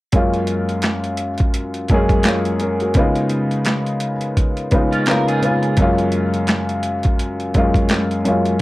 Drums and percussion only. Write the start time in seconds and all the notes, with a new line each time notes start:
0.12 kick, closed hi-hat
0.34 closed hi-hat
0.47 closed hi-hat
0.69 closed hi-hat
0.82 snare, clap, closed hi-hat
1.04 closed hi-hat
1.17 closed hi-hat
1.38 kick, closed hi-hat
1.54 closed hi-hat
1.74 closed hi-hat
1.88 kick, closed hi-hat
2.09 kick, closed hi-hat
2.23 snare, clap, closed hi-hat
2.45 closed hi-hat
2.60 closed hi-hat
2.80 closed hi-hat
2.94 kick, closed hi-hat
3.15 closed hi-hat
3.29 closed hi-hat
3.51 closed hi-hat
3.65 snare, clap, closed hi-hat
3.86 closed hi-hat
4.00 closed hi-hat
4.21 closed hi-hat
4.37 kick, closed hi-hat
4.57 closed hi-hat
4.71 kick, closed hi-hat
4.93 closed hi-hat
5.06 snare, clap, closed hi-hat
5.28 closed hi-hat
5.43 closed hi-hat
5.63 closed hi-hat
5.77 kick, closed hi-hat
5.98 closed hi-hat
6.12 closed hi-hat
6.34 closed hi-hat
6.47 snare, clap, closed hi-hat
6.69 closed hi-hat
6.83 closed hi-hat
7.03 kick, closed hi-hat
7.19 closed hi-hat
7.40 closed hi-hat
7.54 kick, closed hi-hat
7.74 kick, closed hi-hat
7.89 snare, clap, closed hi-hat
8.11 closed hi-hat
8.25 closed hi-hat
8.45 closed hi-hat